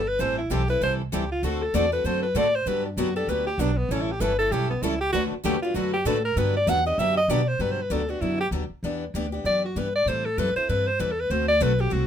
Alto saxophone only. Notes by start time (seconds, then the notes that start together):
0.08 B4
0.20 C5
0.38 E4
0.51 G4
0.70 B4
0.83 C5
1.14 G4
1.31 F4
1.44 F#4
1.62 A4
1.75 D5
1.93 B4
2.05 C5
2.23 B4
2.37 D5
2.55 C5
2.67 B4
2.85 D4
2.99 F#4
3.16 A4
3.29 B4
3.46 G4
3.60 D4
3.77 B3
3.91 C#4
4.01 E4
4.12 G4
4.21 B4
4.38 A4
4.51 G4
4.70 B3
4.83 E4
5.01 G4
5.13 F#4
5.45 G4
5.62 F4
5.75 F#4
5.93 G4
6.07 A4
6.25 A#4
6.38 B4
6.56 D5
6.69 F#5
6.86 D#5
6.99 E5
7.17 D#5
7.30 D5
7.48 C5
7.61 B4
7.71 C5
7.82 B4
7.92 A4
8.09 F#4
8.21 E4
8.40 G4
9.46 D5
9.65 F#4
9.78 B4
9.95 D5
10.08 C5
10.25 A4
10.39 B4
10.56 C5
10.69 B4
10.87 C5
11.00 B4
11.12 A4
11.20 B4
11.30 C5
11.48 D5
11.62 B4
11.80 G4
11.92 F#4